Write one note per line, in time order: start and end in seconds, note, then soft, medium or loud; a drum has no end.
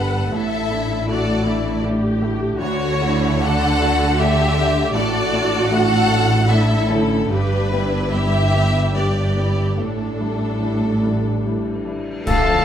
0.00 0.28 G1 medium
0.00 0.28 G2 medium
0.00 0.35 B3 soft
0.00 0.35 D4 soft
0.00 0.34 G4 soft
0.00 0.32 A4 medium
0.00 0.32 B4 medium
0.00 0.32 F#5 medium
0.32 2.60 A1 medium
0.32 0.69 A2 medium
0.32 2.61 A2 medium
0.32 1.06 E4 medium
0.32 1.07 A4 medium
0.32 1.08 E5 medium
0.71 1.04 A3 soft
0.71 1.04 D4 soft
0.71 1.05 E4 soft
1.08 1.42 A3 soft
1.08 1.42 D4 soft
1.08 1.42 E4 soft
1.08 1.45 F#4 medium
1.08 1.82 A4 medium
1.08 1.82 D5 medium
1.44 1.80 A3 soft
1.44 1.80 D4 soft
1.44 1.83 E4 medium
1.44 1.80 E4 soft
1.83 2.18 A3 soft
1.83 2.18 D4 medium
1.83 2.18 E4 medium
1.83 2.60 G4 medium
2.22 2.57 A3 soft
2.22 2.57 D4 soft
2.22 2.57 E4 medium
2.60 4.92 D2 medium
2.60 3.00 D2 medium
2.60 4.92 D3 medium
2.60 3.01 F#4 medium
2.60 3.38 F#4 medium
2.60 3.39 C#5 loud
3.00 3.38 A3 soft
3.00 3.39 D4 soft
3.00 3.42 E4 medium
3.00 3.39 F#4 medium
3.41 3.78 A3 soft
3.41 3.81 D4 medium
3.41 3.78 D4 soft
3.41 3.78 F#4 medium
3.41 4.20 A4 loud
3.41 4.19 F#5 loud
3.80 4.16 A3 soft
3.80 4.16 D4 medium
3.80 4.18 F#4 medium
3.80 4.16 F#4 medium
4.18 4.55 A3 medium
4.18 4.54 D4 medium
4.18 4.96 G4 loud
4.18 4.57 A4 medium
4.18 4.95 E5 loud
4.18 4.55 F#5 medium
4.56 4.93 A3 medium
4.56 4.93 D4 soft
4.56 4.95 G4 medium
4.56 4.93 F#5 medium
4.94 7.26 A1 medium
4.94 5.32 A2 medium
4.94 7.26 A2 medium
4.94 6.49 F#4 medium
4.94 5.70 A4 medium
4.94 5.70 D5 loud
5.33 5.68 A3 soft
5.33 5.68 D4 medium
5.33 5.68 E4 medium
5.70 6.07 A3 soft
5.70 6.07 D4 medium
5.70 6.07 E4 soft
5.70 6.47 A4 loud
5.70 6.49 F#5 loud
6.11 6.46 A3 soft
6.11 6.47 D4 soft
6.11 6.47 E4 medium
6.49 6.86 A3 medium
6.49 6.86 D4 medium
6.49 7.30 E4 medium
6.49 6.86 E4 medium
6.49 6.89 A4 medium
6.49 6.90 E5 loud
6.89 7.27 D3 soft
6.89 7.27 A3 medium
6.89 7.31 C#4 medium
6.89 7.27 E4 medium
6.89 7.30 A4 medium
7.29 9.75 G1 medium
7.29 7.71 G2 medium
7.29 9.74 G2 medium
7.29 8.13 D4 medium
7.29 7.71 G4 medium
7.29 8.15 B4 loud
7.72 8.11 B3 soft
7.72 8.11 D4 soft
7.72 8.94 E4 medium
7.72 8.11 G4 medium
8.14 8.52 B3 soft
8.14 8.52 D4 soft
8.14 8.95 G4 medium
8.14 8.52 G4 soft
8.14 8.96 E5 loud
8.56 8.92 B3 soft
8.56 8.92 D4 soft
8.56 8.93 G4 soft
8.96 9.33 B3 soft
8.96 9.37 D4 medium
8.96 9.33 D4 soft
8.96 9.77 G4 medium
8.96 9.33 G4 soft
8.96 9.79 D5 medium
9.36 9.74 B3 soft
9.36 9.75 D4 soft
9.36 9.79 E4 medium
9.36 9.75 G4 soft
9.77 12.07 A1 medium
9.77 10.19 A2 soft
9.77 12.07 A2 medium
9.77 11.83 D4 soft
9.77 11.88 D4 medium
9.77 11.86 A4 medium
10.20 10.58 G3 soft
10.20 10.58 D4 soft
10.20 10.58 E4 soft
10.62 11.00 G3 soft
10.62 11.00 D4 soft
10.62 11.00 E4 soft
11.04 11.42 G3 soft
11.04 11.42 D4 soft
11.04 11.42 E4 soft
11.45 11.83 G3 soft
11.45 11.83 D4 soft
11.45 11.84 E4 soft
11.87 12.23 G3 soft
11.87 12.23 D4 soft
11.87 12.24 E4 soft
12.26 12.65 D2 medium
12.26 12.46 D3 medium
12.26 12.65 D3 medium
12.26 12.65 A3 medium
12.26 12.65 D4 medium
12.26 12.65 A4 medium
12.26 12.65 F5 medium
12.26 12.65 A5 medium
12.26 concert bass drum medium
12.26 crash medium
12.46 12.65 F3 medium
12.54 12.65 A2 soft